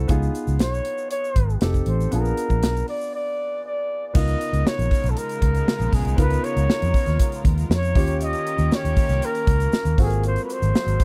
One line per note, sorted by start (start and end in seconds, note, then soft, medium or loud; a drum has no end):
0.00 0.11 C4 medium
0.00 0.11 E4 medium
0.00 0.12 F#4 medium
0.00 0.11 A5 medium
0.08 0.28 C#2 loud
0.08 1.58 B3 medium
0.08 1.58 D#4 medium
0.08 1.59 F4 medium
0.08 1.59 G#4 medium
0.08 kick loud
0.08 closed hi-hat medium
0.08 shaker medium
0.23 shaker soft
0.35 closed hi-hat medium
0.35 shaker medium
0.47 0.61 C#2 medium
0.47 shaker soft
0.59 0.79 B1 medium
0.59 1.08 C#5 loud
0.59 snare loud
0.59 closed hi-hat medium
0.59 shaker medium
0.74 shaker soft
0.85 closed hi-hat medium
0.98 shaker soft
1.11 1.58 C#5 loud
1.11 closed hi-hat medium
1.11 shaker medium
1.24 shaker soft
1.36 1.55 G#1 medium
1.36 kick medium
1.36 closed hi-hat medium
1.50 shaker soft
1.61 1.81 F1 medium
1.61 2.12 C4 medium
1.61 2.12 D#4 medium
1.61 2.12 G4 medium
1.61 2.13 A4 medium
1.61 snare loud
1.61 closed hi-hat medium
1.61 shaker medium
1.74 kick medium
1.74 shaker medium
1.86 2.06 A1 medium
1.86 2.11 C5 medium
1.86 closed hi-hat medium
2.01 shaker soft
2.11 2.31 A#1 loud
2.11 4.11 B3 medium
2.11 4.11 D4 medium
2.11 4.11 F4 medium
2.11 4.12 G#4 medium
2.11 2.85 A#4 medium
2.11 closed hi-hat medium
2.11 shaker medium
2.25 shaker soft
2.37 closed hi-hat medium
2.37 shaker soft
2.50 2.63 A#1 loud
2.50 kick medium
2.50 shaker soft
2.63 2.82 B1 medium
2.63 snare loud
2.63 closed hi-hat loud
2.63 shaker medium
2.77 shaker soft
2.88 3.12 D5 loud
2.88 open hi-hat medium
3.01 shaker soft
3.15 3.62 D5 loud
3.67 4.07 D5 loud
4.07 4.17 D5 medium
4.14 4.34 C#2 loud
4.14 7.92 C#3 medium
4.14 7.91 G#3 medium
4.14 6.13 B3 medium
4.14 7.91 B3 medium
4.14 7.91 D#4 medium
4.14 6.13 D#4 medium
4.14 9.94 F4 medium
4.14 6.14 F4 medium
4.14 9.94 A#4 medium
4.14 6.14 A#4 medium
4.14 4.69 D#5 loud
4.14 kick loud
4.14 crash loud
4.14 shaker medium
4.28 closed hi-hat soft
4.28 shaker soft
4.41 closed hi-hat medium
4.41 shaker medium
4.53 4.62 C#2 medium
4.53 closed hi-hat soft
4.53 shaker medium
4.67 5.11 C#5 loud
4.67 snare loud
4.67 shaker medium
4.79 4.88 A#1 medium
4.79 closed hi-hat soft
4.79 shaker soft
4.91 kick medium
4.91 open hi-hat medium
4.91 shaker soft
5.04 5.13 B1 medium
5.04 closed hi-hat soft
5.04 shaker medium
5.10 5.20 A4 medium
5.17 5.96 A#4 loud
5.17 closed hi-hat medium
5.17 shaker medium
5.29 closed hi-hat soft
5.29 shaker soft
5.42 5.61 C#2 medium
5.42 kick medium
5.42 closed hi-hat medium
5.55 closed hi-hat soft
5.55 shaker soft
5.68 snare loud
5.68 shaker medium
5.80 5.89 A#1 medium
5.80 closed hi-hat soft
5.80 shaker medium
5.92 6.02 B1 medium
5.92 6.19 G#4 medium
5.92 kick loud
5.92 open hi-hat medium
5.92 shaker soft
6.05 6.15 C2 medium
6.05 closed hi-hat medium
6.05 shaker soft
6.17 6.37 C#2 medium
6.17 7.91 B3 medium
6.17 7.91 D#4 medium
6.17 7.92 F4 medium
6.17 7.92 A#4 medium
6.17 6.46 B4 loud
6.17 kick loud
6.17 closed hi-hat medium
6.17 shaker medium
6.30 closed hi-hat soft
6.30 shaker soft
6.44 7.45 C#5 loud
6.44 closed hi-hat medium
6.44 shaker medium
6.56 6.66 C#2 medium
6.56 closed hi-hat medium
6.56 shaker medium
6.70 snare loud
6.70 shaker medium
6.82 6.91 F2 medium
6.82 closed hi-hat soft
6.82 shaker soft
6.94 kick medium
6.94 open hi-hat medium
6.94 shaker soft
7.06 7.16 D#2 medium
7.06 snare soft
7.06 closed hi-hat soft
7.06 shaker soft
7.20 kick medium
7.20 closed hi-hat medium
7.20 shaker medium
7.32 closed hi-hat soft
7.32 shaker soft
7.44 7.63 D#2 medium
7.44 kick loud
7.44 closed hi-hat medium
7.58 closed hi-hat soft
7.58 shaker soft
7.70 7.95 F2 medium
7.70 8.18 C#5 loud
7.70 snare loud
7.70 shaker medium
7.83 closed hi-hat soft
7.83 shaker medium
7.94 8.33 D#2 loud
7.94 9.96 D#3 medium
7.94 11.04 A#3 medium
7.94 9.94 C#4 medium
7.94 9.96 C#4 medium
7.94 9.94 F4 medium
7.94 9.96 G4 medium
7.94 9.94 G4 medium
7.94 9.95 C#5 medium
7.94 kick loud
7.94 open hi-hat medium
7.94 shaker soft
8.08 closed hi-hat medium
8.08 shaker soft
8.21 8.76 D#5 loud
8.21 closed hi-hat medium
8.21 shaker medium
8.33 closed hi-hat soft
8.33 shaker soft
8.47 closed hi-hat medium
8.47 shaker medium
8.58 8.68 D#2 medium
8.58 closed hi-hat soft
8.58 shaker medium
8.72 9.27 C#5 loud
8.72 snare loud
8.72 shaker medium
8.85 8.94 D#2 medium
8.85 closed hi-hat medium
8.85 shaker soft
8.96 kick loud
8.96 open hi-hat medium
8.96 shaker medium
9.09 9.19 C2 medium
9.09 snare soft
9.09 closed hi-hat soft
9.09 shaker soft
9.22 10.00 A#4 loud
9.22 closed hi-hat medium
9.22 shaker medium
9.35 closed hi-hat medium
9.35 shaker soft
9.47 9.66 C#2 medium
9.47 kick loud
9.47 closed hi-hat medium
9.60 closed hi-hat soft
9.60 shaker soft
9.72 snare loud
9.72 shaker medium
9.85 9.95 D#2 medium
9.85 closed hi-hat soft
9.85 shaker medium
9.97 10.36 G#1 medium
9.97 11.04 F#3 medium
9.97 11.04 G#3 medium
9.97 11.04 C4 medium
9.97 11.04 F4 medium
9.97 11.04 F#4 medium
9.97 10.05 A4 medium
9.97 kick loud
9.97 open hi-hat medium
9.97 shaker soft
10.01 10.23 G#4 medium
10.06 11.04 A#4 medium
10.10 closed hi-hat medium
10.10 shaker soft
10.24 10.43 C5 medium
10.24 closed hi-hat medium
10.24 shaker medium
10.36 closed hi-hat soft
10.36 shaker soft
10.44 10.54 B4 medium
10.50 11.04 C5 medium
10.50 closed hi-hat medium
10.50 shaker medium
10.62 10.71 G#1 medium
10.62 closed hi-hat medium
10.62 shaker soft
10.75 snare loud
10.75 shaker medium
10.86 10.96 G#1 medium
10.86 closed hi-hat medium
10.86 shaker soft
11.00 kick medium
11.00 closed hi-hat medium
11.00 shaker soft